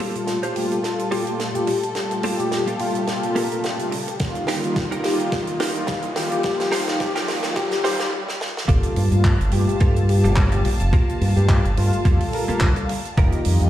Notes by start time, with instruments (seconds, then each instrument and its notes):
Already playing: analog polysynth A#2 G3 A3 F4, string section G3 F4 A4, riser
0.00 clean electric guitar A#3 F4 G4 A4, open hi-hat
0.15 analog polysynth A#2 G3 A3 F4, closed hi-hat
0.27 muted clean electric guitar stroke, snare, closed hi-hat
0.43 clean electric guitar A#3 F4 G4 C5, closed hi-hat
0.55 analog polysynth A#2 G3 A3 F4, analog synth lead G4, open hi-hat
0.71 analog synth lead G4, closed hi-hat
0.83 analog polysynth A#2 G3 F4 A4, snare, closed hi-hat
0.99 closed hi-hat
1.11 clean electric guitar A#3 F4 G4 A4, analog synth lead G4, open hi-hat
1.27 analog polysynth A#2 G3 A3 F4, closed hi-hat
1.40 snare, closed hi-hat
1.54 analog polysynth A#2 G3 A3 F4, analog synth lead G4, closed hi-hat
1.67 analog synth lead G4, muted clean electric guitar stroke, open hi-hat
1.83 muted clean electric guitar stroke, closed hi-hat
1.95 analog polysynth A#2 G3 A3 F4, string section G4, snare, closed hi-hat
2.11 closed hi-hat
2.23 clean electric guitar A#3 F4 G4 A4, open hi-hat
2.39 analog polysynth A#2 G3 A3 F4, analog synth lead G4, closed hi-hat
2.52 snare, closed hi-hat
2.67 clean electric guitar A#3 F4 G4 A4, closed hi-hat
2.79 analog polysynth A#2 G3 A3 F4, analog synth lead F4, open hi-hat
2.95 closed hi-hat
3.07 analog polysynth A#2 G3 F4 A4, snare, closed hi-hat
3.23 closed hi-hat
3.35 clean electric guitar A#3 F4 G4 A4, analog synth lead A#4, open hi-hat
3.51 analog polysynth A#2 G3 A3 F4, analog synth lead A#4, closed hi-hat
3.64 snare, closed hi-hat
3.79 analog polysynth A#2 G3 A3 F4, closed hi-hat
3.92 muted clean electric guitar stroke, open hi-hat
4.08 muted clean electric guitar stroke, closed hi-hat
4.19 analog polysynth D#3 G3 A#3 F4, string section A#3 D#4 F4, kick, snare, closed hi-hat
4.35 closed hi-hat
4.47 clean electric guitar D#4 F4 G4 A#4, snare, open hi-hat
4.63 analog polysynth D#3 G3 A#3 F4, closed hi-hat
4.76 muted clean electric guitar stroke, kick, snare, closed hi-hat
4.91 clean electric guitar D#4 F4 G4 A#4, closed hi-hat
5.04 analog polysynth D#3 G3 A#3 F4, analog synth lead G4, snare, open hi-hat
5.20 analog synth lead G4, closed hi-hat
5.32 analog polysynth D#3 G3 A#3 F4, kick, snare, closed hi-hat
5.47 closed hi-hat
5.60 clean electric guitar D#4 F4 G4 A#4, snare, open hi-hat
5.75 analog polysynth D#3 G3 A#3 F4, closed hi-hat
5.87 kick, snare, closed hi-hat
6.02 closed hi-hat
6.16 analog polysynth D#3 G3 A#3 F4, analog synth lead G4, muted clean electric guitar stroke, snare, open hi-hat
6.32 analog synth lead G4, muted clean electric guitar stroke, closed hi-hat
6.43 analog polysynth D#3 G3 A#3 F4, analog synth lead G4, string section G4, kick, snare, closed hi-hat
6.60 analog synth lead G4, snare, closed hi-hat
6.72 clean electric guitar D#4 F4 G4 C5, snare, open hi-hat
6.87 analog polysynth D#3 G3 A#3 F4, snare, closed hi-hat
7.00 analog polysynth D#3 G3 A#3 F4, analog synth lead G4, muted clean electric guitar stroke, kick, snare, closed hi-hat
7.15 clean electric guitar D#4 F4 G4 A#4, analog synth lead G4, snare, closed hi-hat
7.28 snare, open hi-hat
7.43 analog polysynth D#3 G3 A#3 F4, snare, closed hi-hat
7.56 analog polysynth D#3 G3 A#3 F4, analog synth lead G4, kick, snare, closed hi-hat
7.71 analog synth lead G4, snare, closed hi-hat
7.83 analog polysynth D#3 G3 A#3 F4, clean electric guitar D#4 F4 G4 C5, analog synth lead G4, snare, open hi-hat
7.99 analog synth lead G4, snare, closed hi-hat
8.28 snare
8.41 snare
8.57 snare
8.68 fingered electric bass G1, analog polysynth A#2 G3 F4 A4, clean electric guitar A#3 F4 G4 A4, string section F5 A5, kick, closed hi-hat
8.83 closed hi-hat
8.96 fingered electric bass G2, open hi-hat
9.12 fingered electric bass G2, analog polysynth A#2 G3 A3 F4, closed hi-hat
9.24 kick, clap, closed hi-hat
9.40 fingered electric bass G1, closed hi-hat
9.52 fingered electric bass G2, analog polysynth A#2 G3 A3 F4, analog synth lead G4, muted clean electric guitar stroke, open hi-hat
9.68 analog synth lead G4, closed hi-hat
9.80 fingered electric bass G2, analog polysynth A#2 G3 F4 A4, clean electric guitar A#3 F4 G4 A4, kick, closed hi-hat
9.96 closed hi-hat
10.09 analog synth lead G4, muted clean electric guitar stroke, open hi-hat
10.24 fingered electric bass G1, analog polysynth A#2 G3 A3 F4, clean electric guitar A#3 F4 G4 A4, closed hi-hat
10.36 kick, clap, closed hi-hat
10.52 analog polysynth A#2 G3 A3 F4, analog synth lead G4, muted clean electric guitar stroke, closed hi-hat
10.65 fingered electric bass A#1, analog synth lead G4, muted clean electric guitar stroke, open hi-hat
10.80 fingered electric bass F1, closed hi-hat
10.93 analog polysynth A#2 G3 F4, clean electric guitar A#3 F4 G4 A#4, kick, closed hi-hat
11.09 closed hi-hat
11.21 fingered electric bass G2, open hi-hat
11.36 fingered electric bass G2, analog polysynth A#2 G3 A3 F4, analog synth lead G4, closed hi-hat
11.49 kick, clap, closed hi-hat
11.64 fingered electric bass G1, closed hi-hat
11.77 fingered electric bass G2, analog polysynth A#2 G3 A3 F4, analog synth lead F4, muted clean electric guitar stroke, open hi-hat
11.93 closed hi-hat
12.05 fingered electric bass F2, analog polysynth A#2 G3 F4 A4, clean electric guitar A#3 F4 G4 A4, kick, closed hi-hat
12.20 open hi-hat
12.33 analog synth lead A#4, muted clean electric guitar stroke, open hi-hat
12.48 analog polysynth A#2 G3 A3 F4, clean electric guitar A#3 F4 G4 A4, analog synth lead A#4, muted fingered electric bass stroke, closed hi-hat
12.60 fingered electric bass D2, kick, clap, closed hi-hat
12.76 analog polysynth A#2 G3 A3 F4, muted clean electric guitar stroke, closed hi-hat
12.89 muted clean electric guitar stroke, open hi-hat
13.05 closed hi-hat
13.17 fingered electric bass F1, analog polysynth D#3 G3 A#3 F4, clean electric guitar D#4 F4 G4 A#4, string section G4 D#5, kick, closed hi-hat
13.32 closed hi-hat
13.45 fingered electric bass F2, open hi-hat
13.61 fingered electric bass F2, analog polysynth D#3 G3 A#3 F4, closed hi-hat